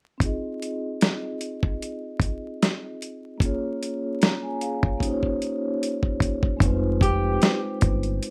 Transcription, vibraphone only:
0.18 C4 D#4
0.22 F4 G#4
0.26 D#5
3.38 A#3 C#4
3.42 F4 G#4 C#5
4.21 C#5 A#5
4.42 G#5
4.61 G#4 F5
4.83 F4 C#5
4.97 A#3 C#4 D#4
5.03 G4 C5
5.12 C#5
6.57 G#3 C4
6.61 D#4 F4 B4
6.71 C5

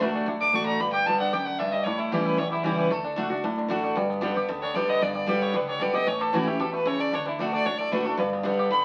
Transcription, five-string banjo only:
Already playing: D4
0.02 A3
0.15 D4
0.28 D4
0.41 D3
0.54 D4
0.67 D4
0.80 G3
0.94 G4
1.07 B3
1.20 D4
1.33 G4
1.47 G3
1.60 D4
1.73 G3
1.86 G3
2.00 E4
2.13 G3
2.25 E4
2.39 G3
2.52 G4
2.65 E4
2.78 G3
2.91 A3
3.05 D4
3.18 A3
3.31 D4
3.45 D4
3.58 D3
3.71 D4
3.84 D4
3.97 G3
4.10 B3
4.23 D4
4.37 G4
4.50 B3
4.63 D4
4.76 G3
4.90 B3
5.02 D4
5.16 G3
5.29 G4
5.42 B3
5.55 G3
5.68 D4
5.81 G3
5.94 G4
6.07 C#4
6.21 G4
6.34 C#4
6.47 E4
6.60 G4
6.73 A3
6.87 E4
7.00 A3
7.13 D4
7.26 D4
7.40 D4
7.53 D4
7.66 D4
7.80 A3
7.93 D4
8.06 A3
8.20 G3
8.33 B3
8.46 D4
8.59 G4
8.73 B3

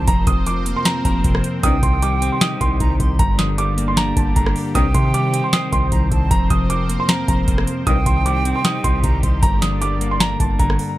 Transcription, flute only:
1.63 G5
2.80 A#5
3.00 C6
4.75 G5
5.92 A#5
6.12 A5
7.87 G5
9.04 A#5
9.23 C6

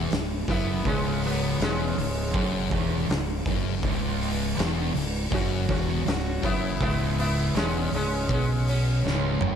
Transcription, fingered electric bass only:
0.11 C#1
0.48 F#1
0.85 C#1
1.60 E1
1.97 C#1
2.34 F#1
2.71 E1
3.09 C#1
3.45 F#1
3.83 C#1
4.58 E1
4.95 C#1
5.31 F#1
5.69 E1
6.06 C#1
6.43 F#1
6.80 C#1
7.54 E1
7.93 C#1
8.29 B1
9.04 C#1
9.41 F#1

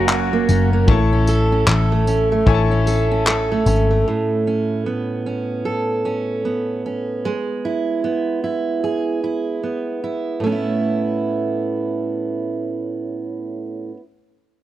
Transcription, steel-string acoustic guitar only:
Already playing: F#2 A#3 C#4
0.09 F#4
0.33 A#3
0.49 C#4
0.73 A#3
0.89 A2
1.13 C#4
1.28 A4
1.52 C#4
1.68 A4
1.92 A3
2.08 C#4
2.32 A3
2.71 C#4
2.87 A4
3.11 C#4
3.28 A4
3.52 A3
3.67 C#4
3.91 A3
4.08 A2
4.47 C#4
4.86 B3
5.26 C#4
5.65 A4
6.05 C#4
6.45 B3
6.86 C#4
7.25 G#3
7.65 E4
8.04 B3
8.44 E4
8.84 G#4
9.24 E4
9.63 B3
10.04 E4
10.40 A2 A3
10.46 B3 C#4
10.52 E4

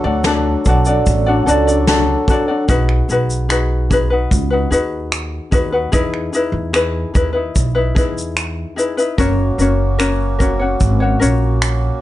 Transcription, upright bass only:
0.04 D2
0.66 B1
1.07 A1
1.47 C#2
2.69 B1
3.09 B1
4.32 C#2
4.71 D#2
5.52 D#2
5.93 E2
6.52 E2
7.15 D#2
7.56 B1
7.96 E2
9.19 F#1
9.58 F#1
10.81 G#1
11.22 A#1

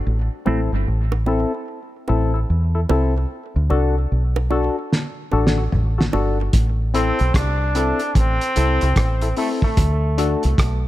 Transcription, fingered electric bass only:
0.07 A1
0.47 A1
0.72 G1
0.88 A1
2.10 A1
2.50 E2
2.90 C2
3.56 D2
3.71 C2
4.12 B1
5.33 A1
5.73 A1
6.14 G1
6.54 A1
7.21 B1
7.35 C2
8.16 A1
8.57 C2
8.83 C2
8.97 A1
9.78 D2
10.45 C2
10.59 B1

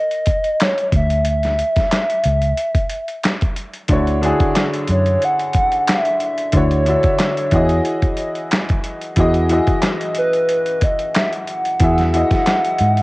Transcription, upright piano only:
3.89 D3 D4 E4 F#4
3.93 C#5
4.22 D3 D4 E4 F#4
4.26 G#4
6.53 D3 D4 E4 F#4
6.57 C#5
6.85 D3 D4 E4 F#4
6.90 E5
7.51 E3 E4 F#4 G#4
7.55 D#5
9.16 E3 E4 F#4 G#4
9.20 D#5
9.49 E3 E4 F#4 G#4
9.53 D#5
11.80 E3 E4 F#4 G#4
11.84 E5
12.13 E3 E4 F#4 G#4
12.17 D#5

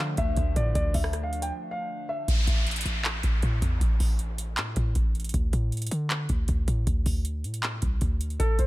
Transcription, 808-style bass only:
Already playing: D3
0.18 D2
0.37 D2
0.56 A2
0.75 D2
0.95 D2
2.28 A1
2.48 A1
2.86 A1
3.24 A1
3.43 A2
3.62 E2
3.81 A1
4.00 A1
4.57 A2
4.77 A2
4.96 A1
5.34 D2
5.53 A2
5.91 D3
6.30 D2
6.49 D2
6.68 A2
6.87 D2
7.06 D2
7.44 A2
7.83 C2
8.02 D2
8.40 A1
8.59 A1

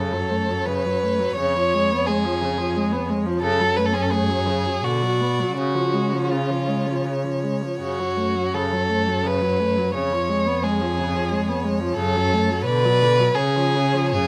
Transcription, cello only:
Already playing: F#2
1.38 F2
3.44 F#2
4.84 B2
5.56 C#3
7.81 F#2
9.95 F2
11.98 F#2
12.66 B2
13.37 C#3
14.14 F#2

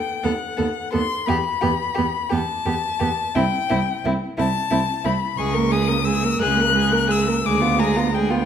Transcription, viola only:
0.23 B3
0.58 B3
0.93 B3
1.27 B3
1.62 B3
1.97 B3
2.31 B3
2.66 B3
3.01 B3
3.36 C4
3.71 C4
4.06 C4
4.38 C4
4.72 C4
5.05 C4
5.39 G#3
5.57 A#3
5.72 G#3
5.89 A#3
6.06 G#3
6.23 A#3
6.39 G#3
6.56 A#3
6.74 G#3
6.91 A#3
7.09 G#3
7.27 A#3
7.44 G#3
7.61 B3
7.80 G#3
7.96 B3
8.13 G#3
8.30 B3

